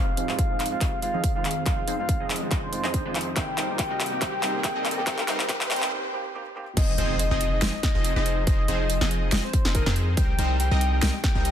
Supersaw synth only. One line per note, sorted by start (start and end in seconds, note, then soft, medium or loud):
0.00 0.12 F3 loud
0.00 0.12 C4 medium
0.00 0.12 D#4 medium
0.00 0.12 G#4 medium
0.00 0.12 C5 loud
0.17 0.47 F3 medium
0.17 0.47 C4 medium
0.17 0.47 D#4 medium
0.17 0.47 G#4 medium
0.17 0.47 C5 loud
0.50 0.79 F3 medium
0.50 0.79 C4 medium
0.50 0.79 D#4 medium
0.50 0.79 G#4 medium
0.50 0.79 D#5 loud
0.81 0.92 F3 medium
0.81 0.92 C4 medium
0.81 0.92 D#4 medium
0.81 0.92 G#4 medium
0.81 0.92 D#5 loud
1.14 1.33 F3 loud
1.14 1.33 C4 medium
1.14 1.33 D#4 medium
1.14 1.33 G#4 medium
1.14 1.33 D#5 loud
1.35 1.64 F3 medium
1.35 1.64 C4 medium
1.35 1.64 D#4 medium
1.35 1.64 G#4 medium
1.35 1.64 C5 medium
1.66 1.82 F3 loud
1.66 1.82 C4 medium
1.66 1.82 D#4 medium
1.66 1.82 G#4 medium
1.66 1.82 C5 loud
1.88 2.18 F3 medium
1.88 2.18 C4 medium
1.88 2.18 D#4 medium
1.88 2.18 G#4 medium
1.88 2.18 C5 loud
2.20 2.49 F3 medium
2.20 2.49 C4 medium
2.20 2.49 D#4 medium
2.20 2.49 G#4 medium
2.20 2.49 D#5 loud
2.51 2.62 F3 medium
2.51 2.62 C4 medium
2.51 2.62 D#4 medium
2.51 2.62 G#4 medium
2.51 2.62 D#5 loud
2.84 3.03 F3 loud
2.84 3.03 C4 medium
2.84 3.03 D#4 medium
2.84 3.03 G#4 medium
2.84 3.03 D#5 loud
3.05 3.34 F3 medium
3.05 3.34 C4 medium
3.05 3.34 D#4 medium
3.05 3.34 G#4 medium
3.05 3.34 C5 medium
3.36 3.52 G3 medium
3.36 3.52 C4 medium
3.36 3.52 D#4 medium
3.36 3.52 A#4 medium
3.36 3.52 C5 loud
3.58 3.88 G3 medium
3.58 3.88 C4 medium
3.58 3.88 D#4 medium
3.58 3.88 A#4 medium
3.58 3.88 C5 loud
3.91 4.19 G3 medium
3.91 4.19 C4 medium
3.91 4.19 D#4 medium
3.91 4.19 A#4 medium
3.91 4.19 D#5 medium
4.22 4.37 G3 medium
4.22 4.37 C4 medium
4.22 4.37 D#4 medium
4.22 4.37 A#4 medium
4.22 4.37 C5 loud
4.43 4.73 G3 medium
4.43 4.73 C4 medium
4.43 4.73 D#4 medium
4.43 4.73 A#4 medium
4.43 4.73 C5 loud
4.76 5.04 G3 loud
4.76 5.04 C4 medium
4.76 5.04 D#4 medium
4.76 5.04 A#4 medium
4.76 5.04 D#5 loud
5.07 5.23 G3 loud
5.07 5.23 C4 medium
5.07 5.23 D#4 medium
5.07 5.23 A#4 medium
5.07 5.23 C5 loud
5.28 5.48 G3 medium
5.28 5.48 C4 medium
5.28 5.48 D#4 medium
5.28 5.48 A#4 medium
5.28 5.48 C5 loud
5.49 5.65 G3 loud
5.49 5.65 C4 medium
5.49 5.65 D#4 medium
5.49 5.65 A#4 medium
5.49 5.65 C5 loud
5.71 5.90 G3 loud
5.71 5.90 C4 medium
5.71 5.90 D#4 medium
5.71 5.90 A#4 medium
5.71 5.90 C5 loud
6.77 6.93 F3 loud
6.77 6.93 C4 medium
6.77 6.93 D#4 medium
6.77 6.93 G#4 medium
6.77 6.93 C5 loud
6.98 7.28 F3 loud
6.98 7.28 C4 medium
6.98 7.28 D#4 medium
6.98 7.28 G#4 medium
6.98 7.28 C5 loud
7.31 7.60 F3 medium
7.31 7.60 C4 medium
7.31 7.60 D#4 medium
7.31 7.60 G#4 medium
7.31 7.60 D#5 loud
7.62 7.72 F3 loud
7.62 7.72 C4 medium
7.62 7.72 D#4 medium
7.62 7.72 G#4 medium
7.62 7.72 D#5 loud
7.95 8.13 F3 loud
7.95 8.13 C4 loud
7.95 8.13 D#4 medium
7.95 8.13 G#4 medium
7.95 8.13 D#5 loud
8.16 8.45 F3 medium
8.16 8.45 C4 medium
8.16 8.45 D#4 medium
8.16 8.45 G#4 medium
8.16 8.45 C5 medium
8.47 8.63 F3 loud
8.47 8.63 C4 medium
8.47 8.63 D#4 medium
8.47 8.63 G#4 medium
8.47 8.63 C5 loud
8.68 8.98 F3 loud
8.68 8.98 C4 medium
8.68 8.99 D#4 medium
8.68 8.98 G#4 medium
8.68 8.98 C5 loud
9.01 9.30 F3 medium
9.01 9.30 C4 medium
9.01 9.30 D#4 medium
9.01 9.30 G#4 medium
9.01 9.30 D#5 loud
9.32 9.43 F3 medium
9.32 9.43 C4 medium
9.32 9.43 D#4 medium
9.32 9.43 G#4 medium
9.32 9.43 D#5 loud
9.65 9.84 F3 medium
9.65 9.84 C4 medium
9.65 9.84 D#4 medium
9.65 9.84 G#4 medium
9.65 9.84 D#5 loud
9.86 10.15 F3 medium
9.86 10.15 C4 medium
9.86 10.15 D#4 medium
9.86 10.15 G#4 medium
9.86 10.15 C5 medium
10.17 10.33 G3 medium
10.17 10.33 C4 medium
10.17 10.33 D#4 medium
10.17 10.33 A#4 medium
10.17 10.33 C5 loud
10.39 10.69 G3 loud
10.39 10.69 C4 medium
10.39 10.69 D#4 medium
10.39 10.69 A#4 medium
10.39 10.69 C5 loud
10.71 11.00 G3 medium
10.71 11.00 C4 medium
10.71 11.00 D#4 medium
10.71 11.00 A#4 medium
10.71 11.00 D#5 loud
11.02 11.13 G3 medium
11.02 11.13 C4 medium
11.02 11.13 D#4 medium
11.02 11.13 A#4 medium
11.02 11.13 D#5 loud
11.35 11.51 G3 loud
11.35 11.51 C4 medium
11.35 11.51 D#4 medium
11.35 11.51 A#4 medium
11.35 11.51 D#5 loud